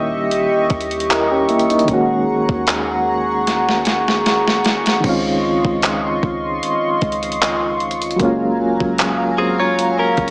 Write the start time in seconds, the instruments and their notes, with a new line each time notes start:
Already playing: 808-style bass D#1, synth keys D#3 G3 A#3 C#4 E4, analog synth pad G4 D#5 E5 C#6
0.31 closed hi-hat
0.70 808-style bass D#2, kick, closed hi-hat
0.81 closed hi-hat
0.91 closed hi-hat
1.00 closed hi-hat
1.10 synth keys E4 A#4, clap, closed hi-hat
1.31 synth keys C#4 G4
1.49 synth keys A#3 E4, closed hi-hat
1.59 closed hi-hat
1.70 synth keys A#3 D#4, closed hi-hat
1.79 closed hi-hat
1.84 808-style bass D#1, synth keys D#3 G#3, analog synth pad G#4 F#5 A#5, kick, closed hi-hat
1.89 synth keys A#3 C#4
1.93 synth keys F#4
2.28 808-style bass A#1
2.49 808-style bass D#2, kick
2.67 clap, closed hi-hat
3.47 snare, closed hi-hat
3.69 snare
3.85 snare, closed hi-hat
4.08 snare
4.26 snare, closed hi-hat
4.48 snare
4.65 snare, closed hi-hat
4.86 snare, closed hi-hat
5.00 808-style bass C#2, synth keys D#3 G#3, analog synth pad F4 D#5 C6, kick, crash
5.04 synth keys C4 C#4
5.09 synth keys F4
5.65 808-style bass C#2, kick
5.82 clap, closed hi-hat
6.23 808-style bass C#2, kick
6.63 closed hi-hat
7.01 808-style bass C#2, kick, closed hi-hat
7.12 closed hi-hat
7.23 closed hi-hat
7.32 closed hi-hat
7.42 clap, closed hi-hat
7.80 closed hi-hat
7.91 closed hi-hat
8.02 closed hi-hat
8.11 closed hi-hat
8.16 808-style bass F#1, synth keys F#3 G#3, analog synth pad F#3 F5 G#5 A#5, kick, closed hi-hat
8.20 synth keys A#3 C#4
8.25 synth keys F4
8.80 808-style bass F#1, kick
8.98 clap, closed hi-hat
9.38 clean electric guitar C4 G#4
9.60 clean electric guitar F4 C#5
9.79 closed hi-hat
9.99 clean electric guitar C#4 A#4
10.17 808-style bass F#1, kick, closed hi-hat